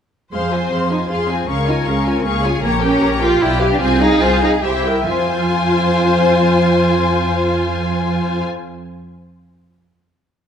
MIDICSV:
0, 0, Header, 1, 6, 480
1, 0, Start_track
1, 0, Key_signature, -4, "minor"
1, 0, Tempo, 386847
1, 407, Time_signature, 3, 2, 24, 8
1, 4238, Tempo, 402414
1, 5198, Tempo, 430108
1, 12180, End_track
2, 0, Start_track
2, 0, Title_t, "Violin section"
2, 0, Program_c, 0, 48
2, 408, Note_on_c, 0, 84, 35
2, 634, Note_off_c, 0, 84, 0
2, 656, Note_on_c, 0, 80, 33
2, 892, Note_on_c, 0, 84, 36
2, 895, Note_off_c, 0, 80, 0
2, 1130, Note_on_c, 0, 80, 37
2, 1131, Note_off_c, 0, 84, 0
2, 1369, Note_off_c, 0, 80, 0
2, 1371, Note_on_c, 0, 84, 39
2, 1592, Note_off_c, 0, 84, 0
2, 1609, Note_on_c, 0, 80, 38
2, 1846, Note_off_c, 0, 80, 0
2, 1849, Note_on_c, 0, 85, 45
2, 2069, Note_off_c, 0, 85, 0
2, 2085, Note_on_c, 0, 80, 40
2, 2317, Note_on_c, 0, 85, 41
2, 2323, Note_off_c, 0, 80, 0
2, 2551, Note_on_c, 0, 80, 44
2, 2557, Note_off_c, 0, 85, 0
2, 2787, Note_on_c, 0, 85, 48
2, 2793, Note_off_c, 0, 80, 0
2, 3014, Note_off_c, 0, 85, 0
2, 3028, Note_on_c, 0, 80, 51
2, 3269, Note_on_c, 0, 82, 57
2, 3271, Note_off_c, 0, 80, 0
2, 3494, Note_off_c, 0, 82, 0
2, 3506, Note_on_c, 0, 79, 53
2, 3743, Note_on_c, 0, 82, 60
2, 3750, Note_off_c, 0, 79, 0
2, 3980, Note_on_c, 0, 79, 58
2, 3990, Note_off_c, 0, 82, 0
2, 4213, Note_off_c, 0, 79, 0
2, 4227, Note_on_c, 0, 79, 58
2, 4451, Note_off_c, 0, 79, 0
2, 4459, Note_on_c, 0, 77, 58
2, 4698, Note_on_c, 0, 80, 67
2, 4704, Note_off_c, 0, 77, 0
2, 4929, Note_off_c, 0, 80, 0
2, 4936, Note_on_c, 0, 77, 59
2, 5183, Note_on_c, 0, 80, 58
2, 5190, Note_off_c, 0, 77, 0
2, 5419, Note_on_c, 0, 77, 58
2, 5425, Note_off_c, 0, 80, 0
2, 5661, Note_on_c, 0, 76, 60
2, 5664, Note_off_c, 0, 77, 0
2, 5894, Note_off_c, 0, 76, 0
2, 5905, Note_on_c, 0, 79, 53
2, 6154, Note_on_c, 0, 80, 67
2, 6156, Note_off_c, 0, 79, 0
2, 9904, Note_off_c, 0, 80, 0
2, 12180, End_track
3, 0, Start_track
3, 0, Title_t, "Viola section"
3, 0, Program_c, 1, 48
3, 409, Note_on_c, 1, 68, 37
3, 413, Note_on_c, 1, 77, 37
3, 635, Note_off_c, 1, 68, 0
3, 637, Note_off_c, 1, 77, 0
3, 653, Note_on_c, 1, 72, 35
3, 654, Note_on_c, 1, 65, 34
3, 893, Note_off_c, 1, 72, 0
3, 894, Note_off_c, 1, 65, 0
3, 896, Note_on_c, 1, 68, 33
3, 900, Note_on_c, 1, 77, 35
3, 1127, Note_on_c, 1, 72, 35
3, 1128, Note_on_c, 1, 65, 35
3, 1133, Note_off_c, 1, 68, 0
3, 1135, Note_off_c, 1, 77, 0
3, 1366, Note_on_c, 1, 68, 37
3, 1366, Note_on_c, 1, 77, 35
3, 1367, Note_off_c, 1, 72, 0
3, 1368, Note_off_c, 1, 65, 0
3, 1590, Note_off_c, 1, 68, 0
3, 1590, Note_off_c, 1, 77, 0
3, 1610, Note_on_c, 1, 72, 38
3, 1612, Note_on_c, 1, 65, 38
3, 1847, Note_off_c, 1, 72, 0
3, 1848, Note_off_c, 1, 65, 0
3, 1849, Note_on_c, 1, 77, 42
3, 1854, Note_on_c, 1, 68, 42
3, 2068, Note_off_c, 1, 77, 0
3, 2071, Note_off_c, 1, 68, 0
3, 2078, Note_on_c, 1, 73, 40
3, 2080, Note_on_c, 1, 65, 39
3, 2319, Note_off_c, 1, 73, 0
3, 2320, Note_off_c, 1, 65, 0
3, 2327, Note_on_c, 1, 77, 41
3, 2328, Note_on_c, 1, 68, 40
3, 2562, Note_off_c, 1, 77, 0
3, 2563, Note_off_c, 1, 68, 0
3, 2566, Note_on_c, 1, 73, 42
3, 2569, Note_on_c, 1, 65, 44
3, 2789, Note_on_c, 1, 68, 47
3, 2791, Note_on_c, 1, 77, 47
3, 2800, Note_off_c, 1, 73, 0
3, 2802, Note_off_c, 1, 65, 0
3, 3015, Note_off_c, 1, 68, 0
3, 3016, Note_off_c, 1, 77, 0
3, 3031, Note_on_c, 1, 73, 52
3, 3035, Note_on_c, 1, 65, 51
3, 3251, Note_off_c, 1, 73, 0
3, 3264, Note_on_c, 1, 70, 54
3, 3265, Note_on_c, 1, 73, 57
3, 3275, Note_off_c, 1, 65, 0
3, 3492, Note_off_c, 1, 70, 0
3, 3493, Note_off_c, 1, 73, 0
3, 3503, Note_on_c, 1, 67, 52
3, 3507, Note_on_c, 1, 70, 53
3, 3735, Note_off_c, 1, 70, 0
3, 3749, Note_off_c, 1, 67, 0
3, 3749, Note_on_c, 1, 73, 55
3, 3750, Note_on_c, 1, 70, 54
3, 3976, Note_off_c, 1, 70, 0
3, 3991, Note_on_c, 1, 70, 54
3, 3993, Note_off_c, 1, 73, 0
3, 3993, Note_on_c, 1, 67, 54
3, 4233, Note_on_c, 1, 74, 57
3, 4234, Note_on_c, 1, 65, 62
3, 4235, Note_off_c, 1, 70, 0
3, 4237, Note_off_c, 1, 67, 0
3, 4454, Note_off_c, 1, 65, 0
3, 4454, Note_off_c, 1, 74, 0
3, 4467, Note_on_c, 1, 71, 60
3, 4469, Note_on_c, 1, 67, 62
3, 4704, Note_on_c, 1, 65, 61
3, 4705, Note_on_c, 1, 72, 60
3, 4708, Note_off_c, 1, 67, 0
3, 4708, Note_off_c, 1, 71, 0
3, 4932, Note_off_c, 1, 65, 0
3, 4932, Note_off_c, 1, 72, 0
3, 4944, Note_on_c, 1, 68, 57
3, 4946, Note_off_c, 1, 68, 0
3, 4946, Note_on_c, 1, 68, 58
3, 5195, Note_off_c, 1, 68, 0
3, 5197, Note_on_c, 1, 65, 58
3, 5200, Note_on_c, 1, 72, 60
3, 5430, Note_on_c, 1, 68, 52
3, 5431, Note_off_c, 1, 68, 0
3, 5431, Note_on_c, 1, 68, 54
3, 5432, Note_off_c, 1, 65, 0
3, 5433, Note_off_c, 1, 72, 0
3, 5670, Note_on_c, 1, 67, 53
3, 5670, Note_on_c, 1, 72, 55
3, 5671, Note_off_c, 1, 68, 0
3, 5899, Note_off_c, 1, 67, 0
3, 5899, Note_off_c, 1, 72, 0
3, 5916, Note_on_c, 1, 70, 54
3, 5918, Note_on_c, 1, 76, 56
3, 6162, Note_off_c, 1, 70, 0
3, 6163, Note_off_c, 1, 76, 0
3, 6165, Note_on_c, 1, 65, 69
3, 9909, Note_off_c, 1, 65, 0
3, 12180, End_track
4, 0, Start_track
4, 0, Title_t, "Violin section"
4, 0, Program_c, 2, 48
4, 403, Note_on_c, 2, 72, 49
4, 1318, Note_off_c, 2, 72, 0
4, 1377, Note_on_c, 2, 68, 38
4, 1840, Note_off_c, 2, 68, 0
4, 1849, Note_on_c, 2, 70, 53
4, 2780, Note_off_c, 2, 70, 0
4, 2795, Note_on_c, 2, 68, 55
4, 3265, Note_off_c, 2, 68, 0
4, 3278, Note_on_c, 2, 67, 66
4, 4214, Note_off_c, 2, 67, 0
4, 4229, Note_on_c, 2, 67, 67
4, 4697, Note_off_c, 2, 67, 0
4, 4705, Note_on_c, 2, 68, 81
4, 5665, Note_on_c, 2, 67, 62
4, 5669, Note_off_c, 2, 68, 0
4, 5914, Note_off_c, 2, 67, 0
4, 6168, Note_on_c, 2, 72, 68
4, 9910, Note_off_c, 2, 72, 0
4, 12180, End_track
5, 0, Start_track
5, 0, Title_t, "Cello section"
5, 0, Program_c, 3, 48
5, 409, Note_on_c, 3, 56, 50
5, 506, Note_off_c, 3, 56, 0
5, 652, Note_on_c, 3, 60, 57
5, 1122, Note_off_c, 3, 60, 0
5, 1127, Note_on_c, 3, 63, 57
5, 1223, Note_off_c, 3, 63, 0
5, 1368, Note_on_c, 3, 65, 52
5, 1601, Note_on_c, 3, 60, 59
5, 1603, Note_off_c, 3, 65, 0
5, 1838, Note_off_c, 3, 60, 0
5, 1838, Note_on_c, 3, 61, 67
5, 1935, Note_off_c, 3, 61, 0
5, 2077, Note_on_c, 3, 63, 64
5, 2174, Note_off_c, 3, 63, 0
5, 2320, Note_on_c, 3, 61, 63
5, 2670, Note_off_c, 3, 61, 0
5, 2683, Note_on_c, 3, 60, 62
5, 2798, Note_on_c, 3, 58, 70
5, 2799, Note_off_c, 3, 60, 0
5, 3036, Note_off_c, 3, 58, 0
5, 3037, Note_on_c, 3, 56, 69
5, 3133, Note_off_c, 3, 56, 0
5, 3277, Note_on_c, 3, 58, 82
5, 3373, Note_off_c, 3, 58, 0
5, 3512, Note_on_c, 3, 61, 92
5, 3985, Note_off_c, 3, 61, 0
5, 3996, Note_on_c, 3, 65, 96
5, 4233, Note_off_c, 3, 65, 0
5, 4239, Note_on_c, 3, 64, 85
5, 4591, Note_off_c, 3, 64, 0
5, 4595, Note_on_c, 3, 62, 84
5, 4705, Note_on_c, 3, 60, 98
5, 4710, Note_off_c, 3, 62, 0
5, 4945, Note_off_c, 3, 60, 0
5, 4946, Note_on_c, 3, 63, 107
5, 5192, Note_on_c, 3, 65, 94
5, 5195, Note_off_c, 3, 63, 0
5, 5427, Note_on_c, 3, 63, 97
5, 5429, Note_off_c, 3, 65, 0
5, 5516, Note_off_c, 3, 63, 0
5, 5670, Note_on_c, 3, 64, 75
5, 6152, Note_off_c, 3, 64, 0
5, 6161, Note_on_c, 3, 65, 74
5, 9907, Note_off_c, 3, 65, 0
5, 12180, End_track
6, 0, Start_track
6, 0, Title_t, "Double bass section"
6, 0, Program_c, 4, 48
6, 403, Note_on_c, 4, 41, 44
6, 833, Note_off_c, 4, 41, 0
6, 893, Note_on_c, 4, 41, 45
6, 1313, Note_off_c, 4, 41, 0
6, 1363, Note_on_c, 4, 41, 50
6, 1787, Note_off_c, 4, 41, 0
6, 1844, Note_on_c, 4, 37, 51
6, 2265, Note_off_c, 4, 37, 0
6, 2324, Note_on_c, 4, 37, 52
6, 2742, Note_off_c, 4, 37, 0
6, 2791, Note_on_c, 4, 37, 59
6, 3216, Note_off_c, 4, 37, 0
6, 3269, Note_on_c, 4, 34, 64
6, 3695, Note_off_c, 4, 34, 0
6, 3750, Note_on_c, 4, 34, 68
6, 4178, Note_off_c, 4, 34, 0
6, 4231, Note_on_c, 4, 35, 76
6, 4650, Note_off_c, 4, 35, 0
6, 4701, Note_on_c, 4, 36, 80
6, 5135, Note_off_c, 4, 36, 0
6, 5190, Note_on_c, 4, 36, 72
6, 5610, Note_off_c, 4, 36, 0
6, 5670, Note_on_c, 4, 36, 65
6, 6105, Note_off_c, 4, 36, 0
6, 6165, Note_on_c, 4, 41, 68
6, 9909, Note_off_c, 4, 41, 0
6, 12180, End_track
0, 0, End_of_file